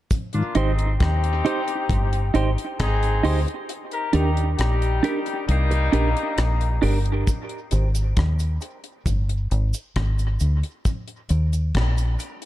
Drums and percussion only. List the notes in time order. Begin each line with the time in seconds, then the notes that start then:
0.11 kick, closed hi-hat, cabasa
0.33 closed hi-hat
0.55 closed hi-hat
0.79 closed hi-hat
1.00 kick, cross-stick, closed hi-hat
1.24 closed hi-hat
1.46 closed hi-hat
1.68 closed hi-hat
1.89 kick, closed hi-hat
2.13 closed hi-hat
2.35 closed hi-hat
2.58 closed hi-hat
2.80 kick, cross-stick, closed hi-hat
3.03 closed hi-hat
3.24 open hi-hat
3.48 closed hi-hat
3.69 closed hi-hat
3.91 closed hi-hat
4.13 closed hi-hat
4.37 closed hi-hat
4.59 cross-stick, closed hi-hat
4.82 closed hi-hat
5.04 closed hi-hat
5.26 closed hi-hat
5.49 closed hi-hat
5.71 closed hi-hat
5.93 closed hi-hat
6.17 closed hi-hat
6.38 cross-stick, closed hi-hat
6.61 closed hi-hat
6.82 open hi-hat
7.06 closed hi-hat
7.27 kick, closed hi-hat, cabasa
7.49 closed hi-hat
7.71 closed hi-hat, cabasa
7.95 closed hi-hat, cabasa
8.17 kick, cross-stick, closed hi-hat
8.39 closed hi-hat, cabasa
8.61 closed hi-hat, cabasa
8.84 closed hi-hat
9.06 kick, closed hi-hat, cabasa
9.29 closed hi-hat
9.51 closed hi-hat, cabasa
9.74 closed hi-hat, cabasa
9.96 kick, cross-stick, closed hi-hat
10.19 closed hi-hat, cabasa
10.40 closed hi-hat, cabasa
10.63 closed hi-hat
10.85 kick, closed hi-hat, cabasa
11.08 closed hi-hat
11.29 closed hi-hat, cabasa
11.53 closed hi-hat, cabasa
11.75 kick, cross-stick, closed hi-hat
11.98 closed hi-hat, cabasa
12.19 closed hi-hat, cabasa
12.42 closed hi-hat